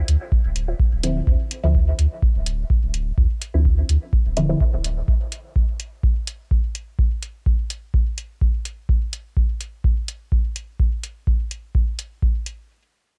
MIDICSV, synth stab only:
0, 0, Header, 1, 2, 480
1, 0, Start_track
1, 0, Key_signature, -1, "minor"
1, 0, Tempo, 476190
1, 1282, Time_signature, 4, 2, 24, 8
1, 13288, End_track
2, 0, Start_track
2, 0, Title_t, "Synth stab"
2, 0, Program_c, 0, 62
2, 1043, Note_on_c, 0, 50, 79
2, 1043, Note_on_c, 0, 53, 72
2, 1043, Note_on_c, 0, 60, 71
2, 1043, Note_on_c, 0, 64, 83
2, 1199, Note_off_c, 0, 50, 0
2, 1199, Note_off_c, 0, 53, 0
2, 1199, Note_off_c, 0, 60, 0
2, 1199, Note_off_c, 0, 64, 0
2, 1648, Note_on_c, 0, 50, 90
2, 1648, Note_on_c, 0, 53, 77
2, 1648, Note_on_c, 0, 60, 78
2, 1648, Note_on_c, 0, 64, 95
2, 1738, Note_off_c, 0, 50, 0
2, 1738, Note_off_c, 0, 53, 0
2, 1738, Note_off_c, 0, 60, 0
2, 1738, Note_off_c, 0, 64, 0
2, 3568, Note_on_c, 0, 53, 62
2, 3569, Note_on_c, 0, 50, 72
2, 3569, Note_on_c, 0, 60, 68
2, 3569, Note_on_c, 0, 64, 76
2, 3658, Note_off_c, 0, 53, 0
2, 3658, Note_off_c, 0, 60, 0
2, 3659, Note_off_c, 0, 50, 0
2, 3659, Note_off_c, 0, 64, 0
2, 4403, Note_on_c, 0, 50, 100
2, 4403, Note_on_c, 0, 53, 91
2, 4403, Note_on_c, 0, 60, 86
2, 4403, Note_on_c, 0, 64, 113
2, 4502, Note_off_c, 0, 50, 0
2, 4502, Note_off_c, 0, 53, 0
2, 4502, Note_off_c, 0, 60, 0
2, 4502, Note_off_c, 0, 64, 0
2, 4529, Note_on_c, 0, 50, 97
2, 4529, Note_on_c, 0, 53, 84
2, 4529, Note_on_c, 0, 60, 87
2, 4529, Note_on_c, 0, 64, 107
2, 4619, Note_off_c, 0, 50, 0
2, 4619, Note_off_c, 0, 53, 0
2, 4619, Note_off_c, 0, 60, 0
2, 4619, Note_off_c, 0, 64, 0
2, 13288, End_track
0, 0, End_of_file